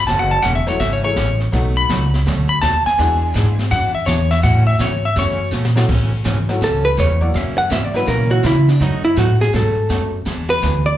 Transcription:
0.07 F#1 C#3 E3 A3 C#4 F#4 A5, brush sweep, kick, snare
0.19 F#5
0.31 A5
0.42 E1 C#3 E3 A3 C#4 F#4 F#5, kick, snare, hi-hat pedal
0.55 E5
0.67 F#3 A3 C#4 E4 F#4 C#5, muted upright bass stroke, snare
0.79 G#1 C#3 E3 A3 C#4 F#4 E5, brush sweep, kick, snare
0.93 C#5
1.03 F#3 A3 C#4 E4 G#4 C#5
1.16 A1 C#3 E3 A3 C#4 F#4, kick, snare, hi-hat pedal
1.40 snare
1.52 B1 B2 F#3 A3 B3 D#4 F#4, brush sweep, kick, snare
1.77 B5
1.89 C#2 B2 F#3 A3 D#4 F#4, kick, snare, hi-hat pedal
2.14 snare
2.26 D2 B2 F#3 A3 D#4 F#4, brush sweep, kick, snare
2.49 B5
2.61 D#2 B2 F#3 A3 D#4 F#4 A5, kick, snare, hi-hat pedal
2.86 G#5, muted upright bass stroke, snare
2.98 E2 E3 G#3 B3 D4 E4 F#4 G#4, brush sweep, kick, snare
3.34 G#2 E3 G#3 B3 D4 E4 G#4, kick, snare, hi-hat pedal
3.59 snare
3.70 F#2 E3 B3 D4 G#4 F#5, brush sweep, kick, snare
3.95 E5, muted upright bass stroke
4.06 E2 E3 B3 D4 G#4 C#5, kick, snare, hi-hat pedal
4.31 E5, snare
4.42 A2 C#3 E3 A3 C#4 F#4 F#5, brush sweep, kick, snare
4.67 E5
4.79 G#2 C#3 E3 A3 C#4 F#4 C#5, kick, snare, hi-hat pedal
5.05 E5
5.16 F#2 C#3 E3 A3 C#4 F#4 C#5, brush sweep, kick, snare
5.51 A#2 C#3 E3 A3 C#4 F#4, snare, hi-hat pedal
5.65 snare
5.76 F#3 A3 C#4 E4 F#4, snare
5.88 A2 C#3 E3 A3 C#4 F#4, brush sweep, kick, snare, crash
6.24 G#2 C#3 E3 A3 C#4 F#4, kick, snare, hi-hat pedal
6.49 F#3 A3 C#4 E4 F#4, snare
6.60 C#2 C#3 E3 A3 C#4 F#4 A4, brush sweep, kick, snare
6.85 B4
6.97 E2 C#3 E3 A3 C#4 F#4 C#5, kick, snare, hi-hat pedal
7.21 F#3 A#3 C#4 E4 F#4 D5
7.34 F#2 C#3 E3 A#3 C#4 F#4 E5, brush sweep, kick, snare
7.58 F#5
7.70 G#2 C#3 E3 A#3 C#4 F#4 E5, kick, snare, hi-hat pedal
7.85 D5
7.94 F#3 A#3 C#4 E4 F#4 B4, snare
8.06 A#2 C#3 E3 A#3 C#4 F#4 A#4, brush sweep, kick, snare
8.30 F#3 A#3 C#4 E4 F#4
8.43 C#3 E3 A#3 C#4 E4 F#4, kick, snare, hi-hat pedal
8.68 D4, snare
8.80 F#2 B2 F#3 A3 D#4 F#4, brush sweep, kick, snare
9.05 E4
9.16 A2 B2 F#3 A3 D#4 F#4, kick, snare, hi-hat pedal
9.41 G#4, snare
9.53 G#2 B2 F#3 A3 D#4 F#4 A4, brush sweep, kick, snare
9.89 F#2 B2 F#3 A3 D#4 F#4, kick, snare, hi-hat pedal
10.25 E2 E3 B3 D4 G#4, brush sweep, kick, snare
10.50 B4
10.62 D2 E3 B3 D4 G#4, kick, snare, hi-hat pedal
10.86 D5

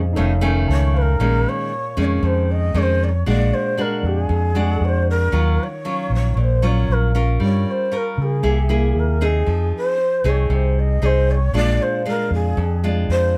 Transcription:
Already playing: F2 A#2 C#4 G#4 C5 D#5
0.13 F1 F2 D#3 A3 C#4 D#4 A4 C#5
0.19 F5
0.41 D#3 A3 C#4 G#5
0.68 C#2 C#5 A5
0.94 B4 F5
1.01 A#4
1.19 A#1 A#2 D#3 G#3 C#4
1.48 C#5
1.97 F2 D#3 G#3 C#4 D5
2.05 C#5
2.23 F2 C5
2.51 D#5
2.74 F2 D#3 G#3 C#4 C#5
2.82 C5
3.04 D5
3.08 C#5
3.26 A#1 A#2 G#3 D4 F#4 D5
3.53 C5
3.77 G#3 D4 F#4 A#4
4.03 F2 G4
4.21 G#4
4.29 F2
4.55 G#3 D4 F#4
4.81 F2 C#5
4.88 C5
5.10 A#4
5.32 D#2 D#3 F#3 C#4 F4
5.63 C#5
5.85 F#3 C#4 F4
6.10 A#1
6.15 C#5
6.33 A#1 A#2 C#5
6.40 C5 C#5
6.62 F#3 C#4 F4
6.66 D5
6.71 C#5
6.88 A#1
6.92 A#4
7.15 C#4 F4 A#4
7.40 G2 G3
7.44 C#5
7.70 C5
7.92 C#4 F4 A#4
7.97 A#4
8.18 C#3
8.22 G#4
8.43 C2 C3 A#3 E4 G#4
8.69 A#3 E4 G#4
8.95 D#2 A#4
9.21 C4 D#4 G#4
9.25 G#4
9.46 F2 F3
9.77 C5
10.24 C2 C4 D#4 G#4
10.29 C#5
10.46 C2 C3 C#5
10.54 C5
10.79 D#5
11.02 C2 C4 D#4 G#4 C5
11.31 C#5 D5
11.53 A#1 A#2 G#3 D4 F4 D5
11.82 C5
12.05 G#3 D4 F4 A#4
12.31 F2 G#4
12.57 F2
12.84 G#3 D4 F4
13.09 F2 C5

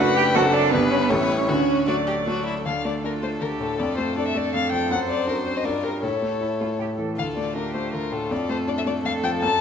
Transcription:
Already playing: F#1 F#2 F#4
0.00 A3 D4 A4 B4 F#5
0.16 G4 G5
0.34 F#1 F#2 C4 D4 F#4 A4 F#5
0.52 D4 D5
0.71 G1 G2 B3 D4 G4 B4
0.90 C#4 C#5
1.00 B3 B4
1.09 A1 A2 G3 A3 C#4 E4 A4 C#5
1.19 B3 B4
1.38 C#4 C#5
1.47 D2 D3 C#4 F#4 C#5
1.87 F#3 A3 D4 F#4 D5
2.07 G4
2.27 F#3 A3 F#4
2.46 E4
2.66 D2 D4 A4 F5
2.85 A3 D5
3.03 D4 F4 A#4
3.23 A3 C5
3.41 D2 G4 A#4
3.60 A2 A4
3.78 F2 F4 D5
3.98 A3 C5
4.17 D4 A4 D5
4.28 E5
4.35 A3 D5
4.54 F2 F5
4.72 F3 G5
4.90 F#2 C5 F#5
5.09 C4 D5
5.27 D4 F#4 A#4
5.46 C4 C5
5.57 D#5
5.64 G2 F4 A#4 D5
5.84 G4 A#4
6.03 A2 E4 A4 C#5
6.22 A3
6.41 E4
6.60 A3 F4
6.79 A2 G4
6.98 E3 A4
7.18 D2 F4 A4 F5
7.37 A3 D5
7.55 D4 G4 A#4
7.74 A3 C5
7.94 D2 F4 A#4
8.12 A2 A4
8.31 F2 F4 A4 D5
8.49 A3 C5
8.68 D4 D5
8.78 E5
8.86 A3 D5
9.04 F2 A4 F5
9.23 F3 G5
9.42 F#2 A5

